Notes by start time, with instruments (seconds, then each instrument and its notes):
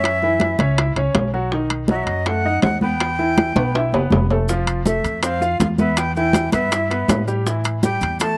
Already playing: upright bass F#2, upright piano C#4 C#5, flute E5
0.03 high bongo, high conga, high timbale
0.22 upright piano E3 E4, high bongo, high conga
0.40 high bongo, high conga, high timbale
0.58 upright bass C#2, upright piano C#4 C#5, high conga, high timbale
0.78 upright piano E4 E5, high bongo, high conga, high timbale
0.96 upright bass C#2, upright piano C#4 C#5, high bongo, high conga, high timbale
1.15 upright bass B1, high bongo, low bongo, high conga, high timbale, low timbale
1.34 upright piano F#3 F#4, high bongo, high conga
1.52 upright piano D#3 D#4, high bongo, high conga
1.70 high conga, high timbale
1.88 upright piano F#3 F#4, flute D#5, high bongo, high conga
1.96 flute E5
2.04 upright bass F#2, flute D#5, high timbale
2.26 upright piano A3 A4, flute F#5, high bongo, high conga, high timbale
2.44 upright piano D#4 D#5, high conga
2.62 upright bass E2, flute F#5, high bongo, low bongo, high conga, high timbale, low timbale
2.81 upright piano B3 B4, flute G5, high conga
3.00 high bongo, high conga, high timbale
3.19 upright piano E3 E4, high bongo, high conga
3.38 high bongo, high conga, high timbale
3.55 upright bass B1, upright piano B3 B4, high conga, high timbale
3.75 upright piano E4 E5, high bongo, high conga, high timbale
3.92 upright bass F#1, upright piano B3 B4, high bongo, high conga, low timbale
4.10 upright bass F1, high bongo, low bongo, high conga, low timbale
4.30 upright piano A3 A4, high bongo, high conga, low timbale
4.48 upright piano F3 F4, high bongo, high conga, maracas
4.66 high conga, high timbale, maracas
4.86 upright piano A3 A4, flute E5, high bongo, high conga, maracas
5.04 upright bass F2, high timbale, maracas
5.22 upright piano C4 C5, flute F5, high bongo, high conga, high timbale, maracas
5.40 upright piano F4 F5, high conga, maracas
5.60 upright bass E2, flute F5, high bongo, low bongo, high conga, high timbale, maracas
5.78 upright piano B3 B4, flute E5, high conga, maracas
5.97 flute G5, high bongo, high conga, high timbale, maracas
6.16 upright piano E3 E4, flute G5, high bongo, high conga, maracas
6.33 high bongo, high conga, high timbale, maracas
6.52 upright bass G2, upright piano B3 B4, flute E5, high conga, high timbale, maracas
6.71 upright piano E4 E5, high bongo, high conga, high timbale, maracas
6.89 upright piano B3 B4, high bongo, high conga, high timbale, maracas
7.08 upright bass A2, high bongo, low bongo, high conga, high timbale, low timbale, maracas
7.28 upright piano G3 G4, high bongo, high conga, maracas
7.46 upright piano E3 E4, high bongo, high conga, maracas
7.64 high conga, high timbale, maracas
7.83 upright piano G3 G4, flute G5, high bongo, high conga, maracas
8.01 upright bass E2, high timbale, maracas
8.20 upright piano A3 A4, flute A5, high bongo, high conga, high timbale, maracas